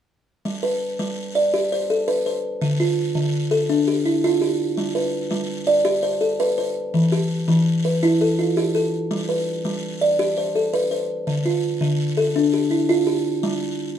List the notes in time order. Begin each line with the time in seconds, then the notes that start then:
0.45 G3
0.63 B4
0.99 G3
1.35 D5
1.54 G4
1.72 C5
1.90 A4
2.08 B4
2.26 C5
2.62 D3
2.80 F4
3.15 D3
3.51 A4
3.69 D4
3.88 G4
4.05 E4
4.24 F4
4.42 G4
4.77 G3
4.95 B4
5.31 G3
5.67 D5
5.85 G4
6.03 C5
6.21 A4
6.40 B4
6.58 C5
6.94 E3
7.12 G4
7.48 E3
7.85 B4
8.03 E4
8.21 A4
8.39 F4
8.57 G4
8.75 A4
9.11 G3
9.29 B4
9.65 G3
10.01 D5
10.19 G4
10.38 C5
10.55 A4
10.74 B4
10.91 C5
11.27 D3
11.45 F4
11.81 D3
12.17 A4
12.36 D4
12.53 G4
12.71 E4
12.89 F4
13.07 G4
13.43 G3